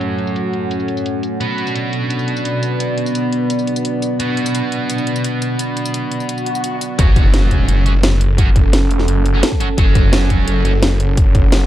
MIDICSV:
0, 0, Header, 1, 8, 480
1, 0, Start_track
1, 0, Key_signature, 3, "minor"
1, 0, Tempo, 348837
1, 15, Time_signature, 4, 2, 24, 8
1, 16050, End_track
2, 0, Start_track
2, 0, Title_t, "Ambient pad"
2, 0, Program_c, 0, 92
2, 0, Note_on_c, 0, 61, 84
2, 0, Note_on_c, 0, 69, 73
2, 0, Note_on_c, 0, 78, 75
2, 1935, Note_off_c, 0, 61, 0
2, 1935, Note_on_c, 0, 62, 80
2, 2103, Note_on_c, 0, 71, 77
2, 3072, Note_off_c, 0, 69, 0
2, 9614, Note_off_c, 0, 78, 0
2, 9614, Note_on_c, 0, 61, 70
2, 9615, Note_off_c, 0, 62, 0
2, 9900, Note_on_c, 0, 69, 74
2, 10264, Note_on_c, 0, 78, 80
2, 10437, Note_off_c, 0, 71, 0
2, 16050, Note_off_c, 0, 61, 0
2, 16050, Note_off_c, 0, 69, 0
2, 16050, Note_off_c, 0, 78, 0
2, 16050, End_track
3, 0, Start_track
3, 0, Title_t, "Analog synth pad"
3, 0, Program_c, 1, 89
3, 0, Note_on_c, 1, 57, 78
3, 0, Note_on_c, 1, 66, 72
3, 0, Note_on_c, 1, 73, 84
3, 1879, Note_off_c, 1, 57, 0
3, 1879, Note_off_c, 1, 73, 0
3, 1934, Note_on_c, 1, 59, 82
3, 1934, Note_on_c, 1, 74, 88
3, 9559, Note_off_c, 1, 59, 0
3, 9559, Note_off_c, 1, 66, 0
3, 9560, Note_off_c, 1, 74, 0
3, 16050, End_track
4, 0, Start_track
4, 0, Title_t, "Distorted electric guitar"
4, 0, Program_c, 2, 30
4, 0, Note_on_c, 2, 54, 69
4, 0, Note_on_c, 2, 61, 56
4, 0, Note_on_c, 2, 66, 69
4, 1906, Note_off_c, 2, 54, 0
4, 1906, Note_off_c, 2, 61, 0
4, 1906, Note_off_c, 2, 66, 0
4, 1930, Note_on_c, 2, 59, 74
4, 1938, Note_on_c, 2, 66, 64
4, 1945, Note_on_c, 2, 71, 76
4, 5746, Note_off_c, 2, 59, 0
4, 5746, Note_off_c, 2, 66, 0
4, 5746, Note_off_c, 2, 71, 0
4, 5772, Note_on_c, 2, 59, 83
4, 5777, Note_on_c, 2, 66, 70
4, 5783, Note_on_c, 2, 71, 68
4, 9586, Note_off_c, 2, 59, 0
4, 9586, Note_off_c, 2, 71, 0
4, 9587, Note_off_c, 2, 66, 0
4, 9612, Note_on_c, 2, 54, 76
4, 9617, Note_on_c, 2, 61, 62
4, 9623, Note_on_c, 2, 66, 74
4, 10786, Note_off_c, 2, 54, 0
4, 10786, Note_off_c, 2, 61, 0
4, 10786, Note_off_c, 2, 66, 0
4, 10811, Note_on_c, 2, 66, 78
4, 10818, Note_on_c, 2, 61, 69
4, 10824, Note_on_c, 2, 54, 64
4, 10905, Note_off_c, 2, 66, 0
4, 10906, Note_off_c, 2, 54, 0
4, 10906, Note_off_c, 2, 61, 0
4, 11533, Note_on_c, 2, 54, 89
4, 11536, Note_on_c, 2, 61, 78
4, 11545, Note_on_c, 2, 66, 90
4, 11680, Note_off_c, 2, 54, 0
4, 11680, Note_off_c, 2, 61, 0
4, 11680, Note_off_c, 2, 66, 0
4, 12850, Note_on_c, 2, 66, 103
4, 12856, Note_on_c, 2, 61, 89
4, 12863, Note_on_c, 2, 54, 79
4, 12945, Note_off_c, 2, 54, 0
4, 12945, Note_off_c, 2, 61, 0
4, 12945, Note_off_c, 2, 66, 0
4, 13211, Note_on_c, 2, 66, 101
4, 13218, Note_on_c, 2, 61, 84
4, 13224, Note_on_c, 2, 54, 70
4, 13305, Note_off_c, 2, 54, 0
4, 13305, Note_off_c, 2, 61, 0
4, 13306, Note_off_c, 2, 66, 0
4, 13450, Note_on_c, 2, 54, 76
4, 13457, Note_on_c, 2, 61, 67
4, 13464, Note_on_c, 2, 66, 80
4, 14626, Note_off_c, 2, 54, 0
4, 14626, Note_off_c, 2, 61, 0
4, 14626, Note_off_c, 2, 66, 0
4, 14650, Note_on_c, 2, 66, 87
4, 14658, Note_on_c, 2, 61, 64
4, 14665, Note_on_c, 2, 54, 67
4, 14745, Note_off_c, 2, 54, 0
4, 14745, Note_off_c, 2, 61, 0
4, 14745, Note_off_c, 2, 66, 0
4, 16050, End_track
5, 0, Start_track
5, 0, Title_t, "Detuned saw bass"
5, 0, Program_c, 3, 39
5, 9615, Note_on_c, 3, 30, 98
5, 9836, Note_off_c, 3, 30, 0
5, 9855, Note_on_c, 3, 30, 98
5, 10556, Note_off_c, 3, 30, 0
5, 10575, Note_on_c, 3, 30, 96
5, 11756, Note_off_c, 3, 30, 0
5, 11775, Note_on_c, 3, 30, 100
5, 12476, Note_off_c, 3, 30, 0
5, 12496, Note_on_c, 3, 30, 95
5, 12956, Note_off_c, 3, 30, 0
5, 13455, Note_on_c, 3, 30, 99
5, 13676, Note_off_c, 3, 30, 0
5, 13695, Note_on_c, 3, 30, 97
5, 14396, Note_off_c, 3, 30, 0
5, 14416, Note_on_c, 3, 30, 94
5, 15596, Note_off_c, 3, 30, 0
5, 15615, Note_on_c, 3, 30, 100
5, 16050, Note_off_c, 3, 30, 0
5, 16050, End_track
6, 0, Start_track
6, 0, Title_t, "Impact"
6, 0, Program_c, 4, 103
6, 9615, Note_on_c, 4, 60, 76
6, 11535, Note_off_c, 4, 60, 0
6, 16050, End_track
7, 0, Start_track
7, 0, Title_t, "Swell"
7, 0, Program_c, 5, 103
7, 8655, Note_on_c, 5, 60, 73
7, 9615, Note_off_c, 5, 60, 0
7, 16050, End_track
8, 0, Start_track
8, 0, Title_t, "Drums"
8, 15, Note_on_c, 9, 42, 88
8, 15, Note_on_c, 9, 54, 46
8, 153, Note_off_c, 9, 42, 0
8, 153, Note_off_c, 9, 54, 0
8, 255, Note_on_c, 9, 42, 62
8, 375, Note_on_c, 9, 54, 54
8, 393, Note_off_c, 9, 42, 0
8, 495, Note_off_c, 9, 54, 0
8, 495, Note_on_c, 9, 42, 87
8, 495, Note_on_c, 9, 54, 45
8, 633, Note_off_c, 9, 42, 0
8, 633, Note_off_c, 9, 54, 0
8, 735, Note_on_c, 9, 42, 63
8, 873, Note_off_c, 9, 42, 0
8, 975, Note_on_c, 9, 42, 85
8, 975, Note_on_c, 9, 54, 45
8, 1096, Note_off_c, 9, 54, 0
8, 1096, Note_on_c, 9, 54, 25
8, 1113, Note_off_c, 9, 42, 0
8, 1216, Note_on_c, 9, 42, 63
8, 1233, Note_off_c, 9, 54, 0
8, 1335, Note_on_c, 9, 54, 55
8, 1353, Note_off_c, 9, 42, 0
8, 1455, Note_off_c, 9, 54, 0
8, 1455, Note_on_c, 9, 42, 88
8, 1455, Note_on_c, 9, 54, 25
8, 1593, Note_off_c, 9, 42, 0
8, 1593, Note_off_c, 9, 54, 0
8, 1695, Note_on_c, 9, 42, 61
8, 1695, Note_on_c, 9, 54, 45
8, 1833, Note_off_c, 9, 42, 0
8, 1833, Note_off_c, 9, 54, 0
8, 1935, Note_on_c, 9, 42, 89
8, 1935, Note_on_c, 9, 54, 46
8, 2073, Note_off_c, 9, 42, 0
8, 2073, Note_off_c, 9, 54, 0
8, 2175, Note_on_c, 9, 42, 59
8, 2295, Note_on_c, 9, 54, 54
8, 2313, Note_off_c, 9, 42, 0
8, 2415, Note_off_c, 9, 54, 0
8, 2415, Note_on_c, 9, 42, 84
8, 2415, Note_on_c, 9, 54, 45
8, 2553, Note_off_c, 9, 42, 0
8, 2553, Note_off_c, 9, 54, 0
8, 2655, Note_on_c, 9, 42, 60
8, 2793, Note_off_c, 9, 42, 0
8, 2895, Note_on_c, 9, 42, 83
8, 2895, Note_on_c, 9, 54, 46
8, 3015, Note_off_c, 9, 54, 0
8, 3015, Note_on_c, 9, 54, 25
8, 3033, Note_off_c, 9, 42, 0
8, 3135, Note_on_c, 9, 42, 61
8, 3153, Note_off_c, 9, 54, 0
8, 3255, Note_on_c, 9, 54, 54
8, 3273, Note_off_c, 9, 42, 0
8, 3375, Note_off_c, 9, 54, 0
8, 3375, Note_on_c, 9, 42, 86
8, 3375, Note_on_c, 9, 54, 25
8, 3513, Note_off_c, 9, 42, 0
8, 3513, Note_off_c, 9, 54, 0
8, 3615, Note_on_c, 9, 42, 59
8, 3615, Note_on_c, 9, 54, 46
8, 3753, Note_off_c, 9, 42, 0
8, 3753, Note_off_c, 9, 54, 0
8, 3855, Note_on_c, 9, 42, 87
8, 3855, Note_on_c, 9, 54, 48
8, 3993, Note_off_c, 9, 42, 0
8, 3993, Note_off_c, 9, 54, 0
8, 4095, Note_on_c, 9, 42, 59
8, 4215, Note_on_c, 9, 54, 55
8, 4233, Note_off_c, 9, 42, 0
8, 4335, Note_off_c, 9, 54, 0
8, 4335, Note_on_c, 9, 42, 85
8, 4335, Note_on_c, 9, 54, 48
8, 4473, Note_off_c, 9, 42, 0
8, 4473, Note_off_c, 9, 54, 0
8, 4575, Note_on_c, 9, 42, 60
8, 4713, Note_off_c, 9, 42, 0
8, 4816, Note_on_c, 9, 42, 85
8, 4816, Note_on_c, 9, 54, 47
8, 4936, Note_off_c, 9, 54, 0
8, 4936, Note_on_c, 9, 54, 26
8, 4953, Note_off_c, 9, 42, 0
8, 5056, Note_on_c, 9, 42, 63
8, 5073, Note_off_c, 9, 54, 0
8, 5176, Note_on_c, 9, 54, 57
8, 5194, Note_off_c, 9, 42, 0
8, 5296, Note_off_c, 9, 54, 0
8, 5296, Note_on_c, 9, 42, 85
8, 5296, Note_on_c, 9, 54, 27
8, 5433, Note_off_c, 9, 42, 0
8, 5433, Note_off_c, 9, 54, 0
8, 5536, Note_on_c, 9, 42, 59
8, 5536, Note_on_c, 9, 54, 47
8, 5673, Note_off_c, 9, 42, 0
8, 5673, Note_off_c, 9, 54, 0
8, 5775, Note_on_c, 9, 42, 86
8, 5775, Note_on_c, 9, 54, 51
8, 5913, Note_off_c, 9, 42, 0
8, 5913, Note_off_c, 9, 54, 0
8, 6016, Note_on_c, 9, 42, 60
8, 6135, Note_on_c, 9, 54, 59
8, 6153, Note_off_c, 9, 42, 0
8, 6256, Note_off_c, 9, 54, 0
8, 6256, Note_on_c, 9, 42, 87
8, 6256, Note_on_c, 9, 54, 47
8, 6393, Note_off_c, 9, 42, 0
8, 6393, Note_off_c, 9, 54, 0
8, 6496, Note_on_c, 9, 42, 62
8, 6633, Note_off_c, 9, 42, 0
8, 6736, Note_on_c, 9, 42, 90
8, 6736, Note_on_c, 9, 54, 50
8, 6856, Note_off_c, 9, 54, 0
8, 6856, Note_on_c, 9, 54, 28
8, 6874, Note_off_c, 9, 42, 0
8, 6975, Note_on_c, 9, 42, 64
8, 6994, Note_off_c, 9, 54, 0
8, 7096, Note_on_c, 9, 54, 61
8, 7113, Note_off_c, 9, 42, 0
8, 7216, Note_off_c, 9, 54, 0
8, 7216, Note_on_c, 9, 42, 88
8, 7216, Note_on_c, 9, 54, 28
8, 7353, Note_off_c, 9, 42, 0
8, 7353, Note_off_c, 9, 54, 0
8, 7455, Note_on_c, 9, 42, 64
8, 7455, Note_on_c, 9, 54, 48
8, 7593, Note_off_c, 9, 42, 0
8, 7593, Note_off_c, 9, 54, 0
8, 7695, Note_on_c, 9, 42, 96
8, 7695, Note_on_c, 9, 54, 51
8, 7833, Note_off_c, 9, 42, 0
8, 7833, Note_off_c, 9, 54, 0
8, 7935, Note_on_c, 9, 42, 65
8, 7935, Note_on_c, 9, 54, 29
8, 8055, Note_off_c, 9, 54, 0
8, 8055, Note_on_c, 9, 54, 62
8, 8073, Note_off_c, 9, 42, 0
8, 8175, Note_off_c, 9, 54, 0
8, 8175, Note_on_c, 9, 42, 92
8, 8175, Note_on_c, 9, 54, 52
8, 8312, Note_off_c, 9, 42, 0
8, 8312, Note_off_c, 9, 54, 0
8, 8415, Note_on_c, 9, 42, 65
8, 8535, Note_on_c, 9, 54, 27
8, 8552, Note_off_c, 9, 42, 0
8, 8655, Note_off_c, 9, 54, 0
8, 8655, Note_on_c, 9, 42, 87
8, 8655, Note_on_c, 9, 54, 49
8, 8775, Note_off_c, 9, 54, 0
8, 8775, Note_on_c, 9, 54, 29
8, 8793, Note_off_c, 9, 42, 0
8, 8895, Note_on_c, 9, 42, 67
8, 8912, Note_off_c, 9, 54, 0
8, 9015, Note_on_c, 9, 54, 62
8, 9033, Note_off_c, 9, 42, 0
8, 9135, Note_off_c, 9, 54, 0
8, 9135, Note_on_c, 9, 42, 89
8, 9135, Note_on_c, 9, 54, 28
8, 9272, Note_off_c, 9, 42, 0
8, 9272, Note_off_c, 9, 54, 0
8, 9375, Note_on_c, 9, 42, 66
8, 9375, Note_on_c, 9, 54, 52
8, 9512, Note_off_c, 9, 42, 0
8, 9512, Note_off_c, 9, 54, 0
8, 9615, Note_on_c, 9, 36, 118
8, 9615, Note_on_c, 9, 42, 103
8, 9752, Note_off_c, 9, 36, 0
8, 9753, Note_off_c, 9, 42, 0
8, 9855, Note_on_c, 9, 36, 109
8, 9855, Note_on_c, 9, 42, 69
8, 9992, Note_off_c, 9, 36, 0
8, 9993, Note_off_c, 9, 42, 0
8, 10095, Note_on_c, 9, 38, 125
8, 10095, Note_on_c, 9, 42, 99
8, 10233, Note_off_c, 9, 38, 0
8, 10233, Note_off_c, 9, 42, 0
8, 10335, Note_on_c, 9, 36, 62
8, 10336, Note_on_c, 9, 42, 69
8, 10473, Note_off_c, 9, 36, 0
8, 10473, Note_off_c, 9, 42, 0
8, 10575, Note_on_c, 9, 42, 100
8, 10713, Note_off_c, 9, 42, 0
8, 10815, Note_on_c, 9, 42, 71
8, 10953, Note_off_c, 9, 42, 0
8, 11055, Note_on_c, 9, 38, 121
8, 11055, Note_on_c, 9, 42, 95
8, 11193, Note_off_c, 9, 38, 0
8, 11193, Note_off_c, 9, 42, 0
8, 11296, Note_on_c, 9, 42, 70
8, 11433, Note_off_c, 9, 42, 0
8, 11535, Note_on_c, 9, 36, 127
8, 11536, Note_on_c, 9, 42, 103
8, 11673, Note_off_c, 9, 36, 0
8, 11673, Note_off_c, 9, 42, 0
8, 11775, Note_on_c, 9, 36, 112
8, 11777, Note_on_c, 9, 42, 71
8, 11913, Note_off_c, 9, 36, 0
8, 11914, Note_off_c, 9, 42, 0
8, 12016, Note_on_c, 9, 38, 126
8, 12016, Note_on_c, 9, 42, 99
8, 12154, Note_off_c, 9, 38, 0
8, 12154, Note_off_c, 9, 42, 0
8, 12256, Note_on_c, 9, 42, 69
8, 12376, Note_on_c, 9, 38, 39
8, 12393, Note_off_c, 9, 42, 0
8, 12496, Note_on_c, 9, 42, 98
8, 12514, Note_off_c, 9, 38, 0
8, 12634, Note_off_c, 9, 42, 0
8, 12736, Note_on_c, 9, 42, 69
8, 12874, Note_off_c, 9, 42, 0
8, 12976, Note_on_c, 9, 38, 125
8, 12976, Note_on_c, 9, 42, 99
8, 13095, Note_on_c, 9, 36, 64
8, 13113, Note_off_c, 9, 38, 0
8, 13113, Note_off_c, 9, 42, 0
8, 13216, Note_on_c, 9, 42, 72
8, 13233, Note_off_c, 9, 36, 0
8, 13353, Note_off_c, 9, 42, 0
8, 13455, Note_on_c, 9, 36, 127
8, 13455, Note_on_c, 9, 42, 99
8, 13593, Note_off_c, 9, 36, 0
8, 13593, Note_off_c, 9, 42, 0
8, 13695, Note_on_c, 9, 36, 111
8, 13695, Note_on_c, 9, 42, 70
8, 13833, Note_off_c, 9, 36, 0
8, 13833, Note_off_c, 9, 42, 0
8, 13935, Note_on_c, 9, 38, 127
8, 13935, Note_on_c, 9, 42, 96
8, 14073, Note_off_c, 9, 38, 0
8, 14073, Note_off_c, 9, 42, 0
8, 14174, Note_on_c, 9, 42, 68
8, 14175, Note_on_c, 9, 36, 67
8, 14312, Note_off_c, 9, 42, 0
8, 14313, Note_off_c, 9, 36, 0
8, 14414, Note_on_c, 9, 42, 99
8, 14552, Note_off_c, 9, 42, 0
8, 14655, Note_on_c, 9, 42, 69
8, 14792, Note_off_c, 9, 42, 0
8, 14895, Note_on_c, 9, 38, 126
8, 14895, Note_on_c, 9, 42, 98
8, 15033, Note_off_c, 9, 38, 0
8, 15033, Note_off_c, 9, 42, 0
8, 15135, Note_on_c, 9, 42, 68
8, 15273, Note_off_c, 9, 42, 0
8, 15375, Note_on_c, 9, 36, 126
8, 15375, Note_on_c, 9, 42, 95
8, 15512, Note_off_c, 9, 36, 0
8, 15512, Note_off_c, 9, 42, 0
8, 15615, Note_on_c, 9, 36, 113
8, 15615, Note_on_c, 9, 42, 65
8, 15753, Note_off_c, 9, 36, 0
8, 15753, Note_off_c, 9, 42, 0
8, 15855, Note_on_c, 9, 38, 125
8, 15855, Note_on_c, 9, 42, 91
8, 15993, Note_off_c, 9, 38, 0
8, 15993, Note_off_c, 9, 42, 0
8, 16050, End_track
0, 0, End_of_file